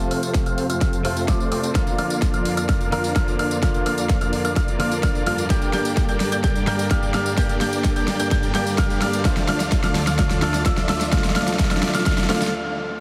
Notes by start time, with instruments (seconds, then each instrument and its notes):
Already playing: analog synth pad F2 F3 C4 A4, clean electric guitar C3 F3 A3 F4, riser
0.11 supersaw synth A3 C4 F4 C5 F5, grand piano F6, open hi-hat
0.23 closed hi-hat, tambourine
0.34 kick, snare, closed hi-hat, tambourine
0.46 supersaw synth A3 C4 F4 C5 F5, grand piano F6, closed hi-hat, tambourine
0.58 open hi-hat
0.70 supersaw synth A3 C4 F4 C5 F5, grand piano F6, closed hi-hat, tambourine
0.81 supersaw synth A3 C4, grand piano F6, kick, snare, closed hi-hat, tambourine
0.93 closed hi-hat, tambourine
1.03 clean electric guitar C3 F3 A3 F4, supersaw synth A3 C4 F4 C5 F5, grand piano F6, open hi-hat
1.17 open hi-hat, tambourine
1.28 supersaw synth A3 C4 F4 C5 D5, grand piano D6, kick, snare, closed hi-hat, tambourine
1.40 tambourine
1.52 supersaw synth A3 C4 F4 C5 D5, grand piano D6, open hi-hat
1.63 closed hi-hat, tambourine
1.74 analog synth pad F2 D4 A#4, clean electric guitar D3 F3 A#3 F4, supersaw synth A#3 D4 F4, grand piano F6, kick, snare, closed hi-hat, tambourine
1.87 closed hi-hat, tambourine
1.98 supersaw synth A#3 D4 F4 D5 F5, grand piano F6, open hi-hat
2.10 closed hi-hat, tambourine
2.22 kick, snare, closed hi-hat, tambourine
2.34 supersaw synth A#3 D4 F4 D5 F5, grand piano F6, closed hi-hat, tambourine
2.45 open hi-hat
2.57 supersaw synth A#3 D4 F4 D5 F5, grand piano F6, closed hi-hat, tambourine
2.69 supersaw synth A#3 D4 F4 D5 F5, grand piano F6, kick, snare, closed hi-hat, tambourine
2.81 closed hi-hat, tambourine
2.91 clean electric guitar D3 F3 A#3 A#4, supersaw synth A#3 D4 F4 D5 F5, grand piano F6, open hi-hat
3.04 open hi-hat, tambourine
3.15 clean electric guitar D3 F3 A#3 F4, supersaw synth A#3 D4 F4 D5 F5, grand piano F6, kick, snare, closed hi-hat, tambourine
3.28 tambourine
3.39 supersaw synth A#3 D4 F4 D5 F5, grand piano F6, open hi-hat
3.51 closed hi-hat, tambourine
3.61 clean electric guitar D3 F3 A#3 F4, supersaw synth A#3 D4 F4, grand piano F6, kick, snare, closed hi-hat, tambourine
3.74 closed hi-hat, tambourine
3.86 supersaw synth A#3 D4 F4 D5 F5, grand piano F6, open hi-hat
3.98 closed hi-hat, tambourine
4.09 kick, snare, closed hi-hat, tambourine
4.21 supersaw synth A#3 D4 F4 D5 F5, grand piano F6, closed hi-hat, tambourine
4.33 open hi-hat
4.45 supersaw synth A#3 D4 F4 D5 F5, grand piano F6, closed hi-hat, tambourine
4.56 supersaw synth A#3 D4 F4 F5, grand piano F6, kick, snare, closed hi-hat, tambourine
4.68 closed hi-hat, tambourine
4.79 clean electric guitar D3 F3 A#3 F4, supersaw synth A#3 D4 F4 D5 F5, grand piano F6, open hi-hat
4.91 open hi-hat, tambourine
5.03 supersaw synth A#3 D4 F4 D5 F5, grand piano F6, kick, snare, closed hi-hat, tambourine
5.15 tambourine
5.26 clean electric guitar G2 D3 F3 A#3 F4, supersaw synth A#3 D4 F4 D5 F5, grand piano F6, open hi-hat
5.38 closed hi-hat, tambourine
5.49 clean electric guitar G2 D3 G3 A#3 G4, analog synth pad G2 G3, supersaw synth A#3 D4 D5, grand piano G6, kick, snare, closed hi-hat, tambourine
5.62 closed hi-hat, tambourine
5.73 supersaw synth A#3 D4 G4 D5 G5, grand piano G6, snare, open hi-hat
5.85 closed hi-hat, tambourine
5.97 kick, snare, closed hi-hat, tambourine
6.09 supersaw synth A#3 D4 G4 D5 G5, grand piano G6, closed hi-hat, tambourine
6.20 snare, open hi-hat
6.32 supersaw synth A#3 D4 G4 D5 G5, grand piano G6, closed hi-hat, tambourine
6.44 supersaw synth A#3 D4 G4 D5 G5, grand piano G6, kick, snare, closed hi-hat, tambourine
6.56 closed hi-hat, tambourine
6.66 clean electric guitar G2 D3 G3 A#3 A#4, supersaw synth A#3 D4 G4 D5 G5, grand piano G6, snare, open hi-hat
6.79 open hi-hat, tambourine
6.90 clean electric guitar G2 D3 G3 A#3 G4, grand piano F6, kick, snare, closed hi-hat, tambourine
7.03 tambourine
7.14 supersaw synth A#3 D4 G4 D5 F5, grand piano F6, snare, open hi-hat
7.26 closed hi-hat, tambourine
7.36 clean electric guitar G2 D3 G3 A#3 G4, supersaw synth A#3 D4 G4 D5 G5, grand piano G6, kick, snare, closed hi-hat, tambourine
7.49 closed hi-hat, tambourine
7.61 supersaw synth A#3 D4 G4 D5 G5, grand piano G6, snare, open hi-hat
7.73 closed hi-hat, tambourine
7.84 kick, snare, closed hi-hat, tambourine
7.96 supersaw synth A#3 D4 G4 D5 G5, grand piano G6, closed hi-hat, tambourine
8.08 snare, open hi-hat
8.20 supersaw synth A#3 D4 G4 D5 G5, grand piano G6, closed hi-hat, tambourine
8.31 supersaw synth D4 D5, grand piano G6, kick, snare, closed hi-hat, tambourine
8.43 closed hi-hat, tambourine
8.54 clean electric guitar G2 D3 G3 A#3 G4, supersaw synth A#3 D4 G4 D5 G5, grand piano G6, snare, open hi-hat
8.67 open hi-hat, tambourine
8.78 supersaw synth A#3 G4 F5, grand piano F6, kick, snare, closed hi-hat, tambourine
8.90 tambourine
9.02 supersaw synth A#3 D4 G4 D5 F5, grand piano F6, snare, open hi-hat
9.13 closed hi-hat, tambourine
9.24 analog synth pad D2 D3 F4 A4, clean electric guitar D3 F3 A3 F4, supersaw synth A3, grand piano F6, kick, snare, closed hi-hat, tambourine
9.37 snare, closed hi-hat, tambourine
9.48 supersaw synth A3 D4 F4 D5 F5, grand piano F6, snare, open hi-hat
9.60 snare, closed hi-hat, tambourine
9.72 kick, snare, closed hi-hat, tambourine
9.84 supersaw synth A3 D4 F4 D5 F5, grand piano F6, snare, closed hi-hat, tambourine
9.95 snare, open hi-hat
10.07 supersaw synth A3 D4 F4 D5 F5, grand piano F6, snare, closed hi-hat, tambourine
10.19 supersaw synth A3 D4 F4 D5 F5, grand piano F6, kick, snare, closed hi-hat, tambourine
10.30 snare, closed hi-hat, tambourine
10.41 clean electric guitar D3 F3 A3 A4, supersaw synth A3 D4 F4 D5 F5, grand piano F6, snare, open hi-hat
10.54 snare, open hi-hat, tambourine
10.65 clean electric guitar D3 F3 A3 F4, supersaw synth A3 D4 D5, grand piano E6, kick, snare, closed hi-hat, tambourine
10.77 snare, tambourine
10.89 supersaw synth A3 D4 F4 D5 E5, grand piano E6, snare, open hi-hat
11.01 snare, closed hi-hat, tambourine
11.11 clean electric guitar D3 F3 A3 F4, supersaw synth A3 D4, grand piano F6, kick, snare, closed hi-hat, tambourine, noise sweep
11.18 snare
11.24 snare, closed hi-hat, tambourine
11.30 snare
11.36 supersaw synth A3 D4 F4 D5 F5, grand piano F6, snare, open hi-hat
11.42 snare
11.48 snare, closed hi-hat, tambourine
11.54 snare
11.59 kick, snare, closed hi-hat, tambourine
11.65 snare
11.71 supersaw synth A3 D4 F4 D5 F5, grand piano F6, snare, closed hi-hat, tambourine
11.77 snare
11.83 snare, open hi-hat
11.89 snare
11.94 supersaw synth A3 D4 F4 D5 F5, grand piano F6, snare, closed hi-hat, tambourine
12.00 snare
12.06 supersaw synth A3 D4 F4 D5 F5, grand piano F6, kick, snare, closed hi-hat, tambourine
12.12 snare
12.18 snare, closed hi-hat, tambourine
12.24 snare
12.29 clean electric guitar D3 F3 A3 F4, supersaw synth A3 D4 F4 D5 F5, grand piano F6, snare, open hi-hat
12.36 snare
12.42 snare, open hi-hat, tambourine
12.47 snare